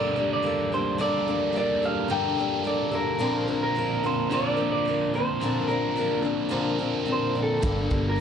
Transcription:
0.00 0.16 G2 medium
0.00 0.17 D3 medium
0.00 0.16 G3 medium
0.00 0.16 A#3 medium
0.00 0.16 D4 medium
0.00 0.15 A4 medium
0.00 1.00 A#4 medium
0.00 0.29 D5 medium
0.16 0.41 G3 soft
0.16 0.43 A#3 soft
0.16 0.44 D4 soft
0.16 0.44 A4 medium
0.33 0.73 D5 medium
0.43 0.71 G3 medium
0.43 0.72 A#3 medium
0.43 0.72 D4 medium
0.43 0.71 A4 medium
0.72 0.98 G3 soft
0.72 0.98 A#3 soft
0.72 0.99 D4 soft
0.72 0.99 A4 soft
0.72 0.99 C5 medium
0.98 1.27 G2 medium
0.98 1.27 D3 medium
0.98 1.27 G3 medium
0.98 1.27 A#3 medium
0.98 1.27 D4 medium
0.98 1.26 A4 medium
0.98 2.12 A#4 medium
0.98 1.56 D5 loud
1.28 1.52 G3 soft
1.28 1.53 A#3 soft
1.28 1.55 D4 soft
1.28 1.55 A4 soft
1.53 1.82 G3 medium
1.53 1.82 A#3 medium
1.53 1.83 D4 medium
1.53 1.81 A4 medium
1.57 1.85 D5 medium
1.82 2.09 G3 soft
1.82 2.08 A#3 soft
1.82 2.08 D4 soft
1.82 2.09 A4 medium
1.82 2.11 F5 medium
2.08 2.37 G2 medium
2.08 2.38 D3 medium
2.08 2.38 G3 medium
2.08 2.38 A#3 medium
2.08 2.38 D4 medium
2.08 2.36 A4 medium
2.08 2.62 G5 loud
2.12 3.22 A#4 medium
2.38 2.63 G3 soft
2.38 2.64 A#3 soft
2.38 2.64 D4 medium
2.38 2.66 A4 soft
2.64 2.92 G3 medium
2.64 2.92 A#3 medium
2.64 2.90 D4 medium
2.64 2.90 A4 medium
2.64 2.95 D5 medium
2.92 3.19 G3 soft
2.92 3.20 A#3 soft
2.92 3.19 D4 soft
2.92 3.20 A4 soft
2.92 3.62 A#4 medium
3.19 3.48 A#2 medium
3.19 3.48 D3 medium
3.19 3.48 F3 medium
3.19 4.31 A#3 medium
3.19 3.48 C4 medium
3.19 3.47 D4 medium
3.19 3.46 A#4 medium
3.48 3.74 F3 soft
3.48 3.75 C4 soft
3.48 3.76 D4 soft
3.48 3.76 A#4 medium
3.63 4.06 A#4 medium
3.75 4.03 F3 medium
3.75 4.04 C4 medium
3.75 4.03 D4 medium
3.75 4.02 A#4 medium
4.04 4.31 F3 soft
4.04 4.31 C4 soft
4.04 4.32 D4 medium
4.04 4.31 A#4 medium
4.04 4.31 C5 medium
4.31 4.60 A#2 medium
4.31 4.59 D3 medium
4.31 4.60 F3 medium
4.31 5.41 A#3 medium
4.31 4.57 C4 medium
4.31 4.57 D4 medium
4.31 4.56 A#4 medium
4.31 4.71 D5 medium
4.57 4.84 F3 soft
4.57 4.86 C4 soft
4.57 4.86 D4 medium
4.57 4.86 A#4 medium
4.72 5.11 D5 medium
4.85 5.14 F3 medium
4.85 5.15 C4 medium
4.85 5.14 D4 medium
4.85 5.13 A#4 medium
5.14 5.41 F3 soft
5.14 5.41 C4 soft
5.14 5.42 D4 soft
5.14 5.42 A#4 medium
5.14 5.72 C5 medium
5.41 5.70 A#2 medium
5.41 5.69 D3 medium
5.41 5.70 F3 medium
5.41 6.52 A#3 medium
5.41 5.70 C4 medium
5.41 5.68 D4 medium
5.41 5.67 A#4 medium
5.68 5.95 F3 soft
5.68 5.96 C4 soft
5.68 5.97 D4 soft
5.68 5.97 A#4 soft
5.68 6.20 A#4 medium
5.96 6.24 F3 medium
5.96 6.24 C4 medium
5.96 6.23 D4 medium
5.96 6.21 A#4 medium
6.22 6.49 F3 soft
6.22 6.50 C4 soft
6.22 6.50 D4 soft
6.22 6.50 A#4 medium
6.49 6.78 A#2 medium
6.49 6.79 D3 medium
6.49 6.79 F3 medium
6.49 7.64 A#3 medium
6.49 6.79 C4 medium
6.49 6.78 D4 medium
6.49 6.77 A#4 medium
6.79 7.04 F3 soft
6.79 7.05 C4 soft
6.79 7.06 D4 medium
6.79 7.07 A#4 medium
7.05 7.34 F3 medium
7.05 7.35 C4 medium
7.05 7.34 D4 medium
7.05 7.34 A#4 medium
7.12 7.39 C5 medium
7.35 7.63 F3 soft
7.35 7.64 C4 soft
7.35 7.63 D4 soft
7.35 7.63 A#4 soft
7.43 8.04 A4 medium
7.62 7.87 G1 medium
7.62 7.91 G2 medium
7.62 7.90 D3 medium
7.62 7.91 G3 medium
7.62 7.90 A#3 medium
7.62 7.90 D4 medium
7.62 8.20 G4 medium
7.62 7.89 A4 medium
7.62 kick loud
7.62 closed hi-hat medium
7.90 8.20 G1 medium
7.90 8.15 G3 soft
7.90 8.16 A#3 soft
7.90 8.17 D4 soft
7.90 8.18 A4 medium
7.90 kick medium
7.90 closed hi-hat medium
8.09 8.20 A#4 medium
8.16 8.20 G3 medium

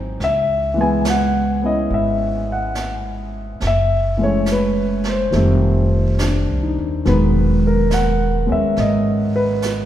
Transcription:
0.00 0.16 G#1 medium
0.00 0.20 E3 soft
0.00 0.20 F#3 soft
0.00 0.21 C4 soft
0.00 0.21 D#4 medium
0.00 0.22 C5 medium
0.20 1.86 C#2 medium
0.20 0.81 E5 medium
0.20 brush sweep soft
0.20 snare soft
0.74 3.58 E3 medium
0.74 3.60 G#3 soft
0.81 1.61 B3 medium
0.81 1.05 G#5 medium
1.05 snare soft
1.05 hi-hat pedal medium
1.09 1.66 F#5 medium
1.62 3.60 B3 soft
1.62 3.61 C#4 soft
1.62 3.62 E4 soft
1.62 1.92 D#5 medium
1.89 3.57 G#1 medium
1.89 brush sweep soft
1.94 2.51 E5 medium
2.52 3.31 F#5 medium
2.75 snare soft
2.75 hi-hat pedal soft
3.60 5.29 F#1 medium
3.60 brush sweep soft
3.60 snare soft
3.67 4.23 E5 medium
4.17 5.32 E3 soft
4.17 5.32 G#3 soft
4.17 5.32 A3 soft
4.22 5.34 C#4 soft
4.22 4.50 C#5 medium
4.46 snare soft
4.46 hi-hat pedal medium
4.52 5.09 B4 medium
5.04 snare soft
5.09 5.89 C5 medium
5.31 6.44 F1 medium
5.31 7.04 D#3 soft
5.31 7.05 G3 soft
5.31 7.06 A3 soft
5.31 brush sweep soft
5.31 snare soft
5.36 7.07 C4 soft
6.19 6.87 D4 soft
6.19 snare soft
6.19 hi-hat pedal soft
6.50 6.76 C2 medium
6.62 7.23 D#4 soft
6.78 7.04 D#2 medium
7.05 8.45 E1 medium
7.05 9.86 D#3 medium
7.05 9.86 F#3 soft
7.05 8.45 G#3 soft
7.05 8.46 B3 medium
7.05 7.61 B4 medium
7.05 brush sweep soft
7.05 snare soft
7.67 7.93 A#4 medium
7.91 8.46 F#5 medium
7.91 snare soft
7.91 hi-hat pedal medium
8.46 8.74 D#2 medium
8.46 9.86 G#3 soft
8.46 9.86 B3 soft
8.46 9.86 C#4 soft
8.52 8.79 E5 medium
8.76 9.86 G#1 medium
8.76 9.37 D#5 medium
8.76 brush sweep soft
8.76 snare soft
9.36 9.86 B4 medium
9.62 snare soft
9.62 hi-hat pedal medium

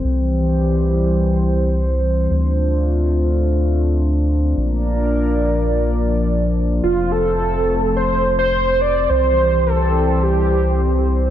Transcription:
0.00 2.28 C2 medium
0.00 2.28 E3 medium
0.00 2.28 G3 medium
0.00 4.53 C4 medium
0.00 2.28 G4 medium
0.00 4.53 C5 medium
2.30 4.54 D2 medium
2.30 4.54 A3 medium
2.30 6.79 D4 medium
2.30 4.55 F4 medium
4.57 6.80 A#1 medium
4.57 9.06 F3 medium
4.57 6.81 A#3 medium
4.57 6.81 A#4 medium
4.57 6.81 D5 medium
6.83 9.07 F1 medium
6.83 9.07 A3 medium
6.83 11.30 C4 medium
6.83 7.13 F4 medium
6.83 9.07 A4 medium
6.83 11.30 C5 medium
7.12 7.96 A4 loud
7.97 8.36 C5 loud
8.39 8.83 C5 loud
8.81 9.11 D5 loud
9.09 11.30 C2 medium
9.09 11.30 E3 medium
9.09 11.30 G3 medium
9.09 11.30 G4 medium
9.09 9.68 C5 loud
9.66 10.24 A4 loud
10.23 11.08 G4 medium

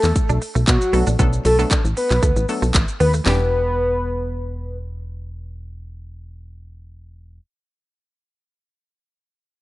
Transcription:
0.00 0.13 E2 medium
0.00 0.13 F#3 medium
0.00 0.13 D4 medium
0.00 0.39 A4 medium
0.00 clap medium
0.00 shaker medium
0.16 kick loud
0.16 closed hi-hat medium
0.16 shaker medium
0.29 0.39 B1 medium
0.29 0.38 D4 medium
0.29 shaker medium
0.42 muted clean electric guitar stroke medium
0.42 open hi-hat medium
0.42 shaker soft
0.55 0.65 B1 medium
0.55 0.64 A3 medium
0.55 shaker medium
0.67 0.78 B2 loud
0.67 1.05 F#4 medium
0.67 muted clean electric guitar stroke soft
0.67 kick loud
0.67 clap medium
0.67 clap loud
0.67 closed hi-hat medium
0.67 shaker medium
0.81 shaker medium
0.93 1.04 B1 loud
0.93 1.09 F#3 medium
0.93 1.09 A3 medium
0.93 1.03 B3 medium
0.93 1.10 B3 medium
0.93 1.10 D4 medium
0.93 1.10 A4 medium
0.93 open hi-hat medium
0.93 shaker soft
1.07 1.17 A#1 medium
1.07 1.15 D4 medium
1.07 shaker medium
1.19 1.40 B1 loud
1.19 1.43 F#3 medium
1.19 1.43 A3 medium
1.19 1.29 B3 medium
1.19 1.43 B3 medium
1.19 1.43 D4 medium
1.19 1.43 A4 loud
1.19 kick loud
1.19 closed hi-hat medium
1.19 shaker medium
1.33 shaker medium
1.45 1.66 B1 loud
1.45 1.57 A4 medium
1.45 muted clean electric guitar stroke medium
1.45 clap medium
1.45 open hi-hat medium
1.45 shaker medium
1.59 2.13 F#3 medium
1.59 2.13 A3 medium
1.59 1.67 B3 medium
1.59 2.13 B3 medium
1.59 2.13 D4 medium
1.59 2.13 A4 medium
1.59 shaker medium
1.71 1.80 D4 medium
1.71 kick loud
1.71 clap medium
1.71 clap loud
1.71 closed hi-hat medium
1.71 shaker medium
1.85 1.94 A1 loud
1.85 shaker medium
1.97 2.46 B4 medium
1.97 muted clean electric guitar stroke soft
1.97 open hi-hat medium
1.97 shaker medium
2.10 2.20 B1 loud
2.10 2.19 B3 medium
2.10 clap medium
2.10 shaker medium
2.23 2.33 D2 loud
2.23 2.32 A3 medium
2.23 kick loud
2.23 closed hi-hat medium
2.23 shaker medium
2.36 2.46 A1 loud
2.36 muted clean electric guitar stroke soft
2.36 shaker medium
2.49 2.95 F#3 medium
2.49 2.96 A3 medium
2.49 2.96 B3 medium
2.49 2.96 D4 medium
2.49 2.96 A4 medium
2.49 open hi-hat medium
2.49 shaker medium
2.62 2.72 B1 medium
2.62 2.71 A3 medium
2.62 shaker medium
2.74 2.85 A1 loud
2.74 muted clean electric guitar stroke soft
2.74 kick loud
2.74 clap medium
2.74 clap loud
2.74 closed hi-hat medium
2.74 shaker medium
2.88 shaker medium
3.00 3.21 D#2 loud
3.00 3.10 B3 medium
3.00 3.12 B4 medium
3.00 open hi-hat medium
3.00 shaker soft
3.14 3.22 A3 medium
3.14 shaker medium
3.24 7.40 E1 loud
3.24 7.38 E3 medium
3.24 3.42 G3 medium
3.24 7.39 B3 medium
3.24 7.40 D4 medium
3.24 7.42 G4 medium
3.24 4.77 B4 loud
3.24 snare loud
3.24 clap medium

